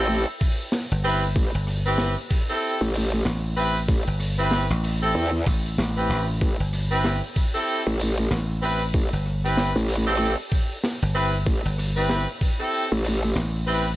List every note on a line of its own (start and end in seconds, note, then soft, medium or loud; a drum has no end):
0.00 0.26 A1 loud
0.00 0.25 C4 loud
0.00 0.25 E4 medium
0.00 0.25 G4 medium
0.00 0.25 A4 loud
0.10 open hi-hat medium
0.28 open hi-hat soft
0.41 kick loud
0.41 open hi-hat medium
0.47 open hi-hat medium
0.52 open hi-hat medium
0.60 open hi-hat soft
0.62 open hi-hat soft
0.68 snare loud
0.68 open hi-hat soft
0.73 open hi-hat medium
0.90 1.34 G1 loud
0.90 open hi-hat soft
1.04 1.25 C4 medium
1.04 1.25 E4 medium
1.04 1.25 G4 medium
1.04 1.25 B4 loud
1.04 open hi-hat medium
1.23 open hi-hat soft
1.36 1.52 A1 loud
1.36 kick loud
1.36 open hi-hat medium
1.54 2.15 G1 loud
1.54 open hi-hat soft
1.57 open hi-hat soft
1.60 open hi-hat soft
1.63 open hi-hat soft
1.67 cross-stick soft
1.67 open hi-hat soft
1.67 open hi-hat medium
1.71 open hi-hat soft
1.76 open hi-hat soft
1.81 open hi-hat soft
1.86 2.15 C4 medium
1.86 2.15 E4 medium
1.86 2.15 G4 medium
1.86 2.15 B4 medium
1.86 open hi-hat soft
1.98 snare loud
1.98 open hi-hat medium
2.17 open hi-hat soft
2.30 kick loud
2.30 open hi-hat medium
2.49 2.78 C4 loud
2.49 2.78 E4 medium
2.49 2.78 G4 medium
2.49 2.78 A4 loud
2.49 open hi-hat medium
2.62 open hi-hat medium
2.81 3.24 A1 loud
2.81 open hi-hat soft
2.94 open hi-hat medium
2.98 open hi-hat medium
3.03 open hi-hat medium
3.08 open hi-hat soft
3.13 open hi-hat soft
3.25 3.87 A1 loud
3.25 snare loud
3.25 open hi-hat medium
3.44 open hi-hat soft
3.56 3.78 C4 loud
3.56 3.78 E4 medium
3.56 3.78 G4 medium
3.56 3.78 B4 loud
3.56 open hi-hat medium
3.76 open hi-hat soft
3.88 4.04 A1 loud
3.88 kick loud
3.88 open hi-hat medium
4.07 4.68 G1 medium
4.07 open hi-hat soft
4.20 cross-stick soft
4.20 open hi-hat medium
4.39 4.67 C4 medium
4.39 4.67 E4 medium
4.39 4.67 G4 medium
4.39 4.67 B4 loud
4.39 open hi-hat medium
4.51 snare loud
4.51 open hi-hat medium
4.70 5.13 A1 loud
4.70 open hi-hat soft
4.84 open hi-hat medium
5.02 5.31 C4 loud
5.02 5.31 E4 medium
5.02 5.31 G4 medium
5.02 5.31 A4 loud
5.15 5.45 E2 loud
5.15 open hi-hat medium
5.46 5.76 A1 loud
5.46 kick loud
5.46 open hi-hat medium
5.66 open hi-hat soft
5.78 6.08 A1 loud
5.78 snare loud
5.78 open hi-hat medium
5.97 6.25 C4 medium
5.97 6.25 E4 medium
5.97 6.25 G4 medium
5.97 6.25 B4 medium
5.97 open hi-hat soft
6.10 6.39 A1 loud
6.10 open hi-hat medium
6.28 open hi-hat soft
6.41 6.57 A1 loud
6.41 kick loud
6.41 open hi-hat medium
6.60 7.20 G1 loud
6.60 open hi-hat soft
6.73 cross-stick soft
6.73 open hi-hat medium
6.91 7.20 C4 medium
6.91 7.20 E4 medium
6.91 7.20 G4 medium
6.91 7.20 B4 loud
6.91 open hi-hat medium
7.04 snare loud
7.04 open hi-hat medium
7.23 open hi-hat soft
7.36 kick loud
7.36 open hi-hat medium
7.55 7.83 C4 loud
7.55 7.83 E4 medium
7.55 7.83 G4 medium
7.55 7.83 A4 loud
7.55 open hi-hat medium
7.68 open hi-hat medium
7.87 8.29 A1 loud
7.87 open hi-hat soft
7.99 open hi-hat medium
8.19 open hi-hat soft
8.31 8.92 A1 loud
8.31 snare loud
8.31 open hi-hat medium
8.62 8.83 C4 loud
8.62 8.83 E4 medium
8.62 8.83 G4 medium
8.62 8.83 B4 loud
8.62 open hi-hat medium
8.81 open hi-hat medium
8.94 9.10 A1 loud
8.94 kick loud
8.94 open hi-hat medium
9.12 9.73 G1 loud
9.12 open hi-hat soft
9.26 cross-stick soft
9.45 9.73 C4 medium
9.45 9.73 E4 medium
9.45 9.73 G4 medium
9.45 9.73 B4 loud
9.45 open hi-hat medium
9.57 snare loud
9.57 open hi-hat medium
9.76 10.36 A1 loud
9.76 open hi-hat soft
9.89 open hi-hat medium
10.07 10.35 C4 loud
10.07 10.35 E4 medium
10.07 10.36 G4 medium
10.07 10.35 A4 loud
10.07 open hi-hat medium
10.20 open hi-hat medium
10.39 open hi-hat soft
10.52 kick loud
10.52 open hi-hat medium
10.72 open hi-hat soft
10.84 snare loud
10.84 open hi-hat medium
11.02 11.45 G1 loud
11.02 open hi-hat soft
11.15 11.36 C4 medium
11.15 11.36 E4 medium
11.15 11.36 G4 medium
11.15 11.36 B4 loud
11.15 open hi-hat medium
11.33 open hi-hat soft
11.46 11.62 A1 loud
11.46 kick loud
11.46 open hi-hat medium
11.65 12.26 G1 loud
11.65 open hi-hat soft
11.78 cross-stick soft
11.78 open hi-hat medium
11.96 12.25 C4 medium
11.96 12.25 E4 medium
11.96 12.25 G4 medium
11.96 12.25 B4 loud
11.96 open hi-hat medium
12.09 snare loud
12.09 open hi-hat medium
12.29 open hi-hat soft
12.41 kick loud
12.41 open hi-hat medium
12.59 12.88 C4 loud
12.59 12.88 E4 medium
12.59 12.88 G4 medium
12.59 12.88 A4 loud
12.59 open hi-hat soft
12.74 open hi-hat medium
12.92 13.34 A1 loud
12.92 open hi-hat soft
13.04 open hi-hat medium
13.23 open hi-hat soft
13.36 13.96 A1 medium
13.36 snare loud
13.36 open hi-hat medium
13.54 open hi-hat soft
13.67 13.88 C4 loud
13.67 13.88 E4 medium
13.67 13.88 G4 medium
13.67 13.88 B4 loud
13.67 open hi-hat medium